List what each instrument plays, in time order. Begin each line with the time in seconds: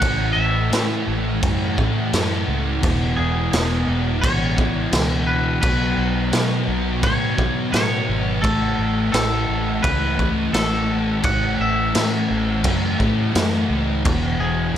Already playing: clean electric guitar F#5
0.00 fingered electric bass A1, distorted electric guitar A2 E3 A3, kick, crash
0.33 fingered electric bass A1, clean electric guitar E5
0.71 distorted electric guitar A2 E3 A3, fingered electric bass A2, snare, crash
1.07 fingered electric bass A1
1.42 fingered electric bass F#2, distorted electric guitar A2 E3 A3, kick, crash
1.77 fingered electric bass A2, distorted electric guitar E3 A3, kick
2.13 fingered electric bass F#2, distorted electric guitar A2 E3 A3, snare, crash
2.48 fingered electric bass C#2
2.82 fingered electric bass E1, distorted electric guitar E2 B2 E3, kick, crash
3.17 fingered electric bass E1, clean electric guitar G#4
3.53 fingered electric bass E1, distorted electric guitar E2 B2 E3, snare, crash
3.88 fingered electric bass E1
4.21 fingered electric bass A1, distorted electric guitar E2 B2 E3, clean electric guitar C#5, kick, crash
4.57 distorted electric guitar B2 E3, kick
4.92 fingered electric bass C#2, distorted electric guitar E2 B2 E3, snare, crash
5.27 clean electric guitar B4
5.61 fingered electric bass B1, distorted electric guitar B2 F#3 B3, clean electric guitar B4, kick, crash
5.98 fingered electric bass B1
6.32 distorted electric guitar B2 F#3 B3, fingered electric bass B2, snare, crash
6.68 fingered electric bass B1
7.02 fingered electric bass A2, distorted electric guitar B2 F#3 B3, clean electric guitar C#5, kick, crash
7.37 fingered electric bass B2, distorted electric guitar F#3 B3, kick
7.71 fingered electric bass A2, distorted electric guitar B2 F#3 B3, clean electric guitar C#5, snare, crash
8.09 fingered electric bass G#1
8.42 fingered electric bass A1, distorted electric guitar A2 E3 A3, clean electric guitar A4, kick, crash
8.79 fingered electric bass A1
9.11 fingered electric bass A1, distorted electric guitar A2 E3 A3, clean electric guitar A4, snare, crash
9.49 fingered electric bass A1
9.82 fingered electric bass C#2, distorted electric guitar A2 E3 A3, clean electric guitar B4, kick, crash
10.18 distorted electric guitar E3 A3, kick
10.52 fingered electric bass A1, distorted electric guitar A2 E3 A3, clean electric guitar A4, snare, crash
11.23 fingered electric bass A1, distorted electric guitar A2 E3 A3, clean electric guitar F#5, kick, crash
11.59 fingered electric bass A1, clean electric guitar E5
11.93 distorted electric guitar A2 E3 A3, fingered electric bass A2, snare, crash
12.30 fingered electric bass A1
12.64 fingered electric bass F#2, distorted electric guitar A2 E3 A3, kick, crash
12.98 fingered electric bass A2, distorted electric guitar E3 A3, kick
13.33 fingered electric bass F#2, distorted electric guitar A2 E3 A3, snare, crash
13.69 fingered electric bass C#2
14.04 fingered electric bass E1, distorted electric guitar E2 B2 E3, kick, crash
14.39 fingered electric bass E1, clean electric guitar G#4
14.74 fingered electric bass E1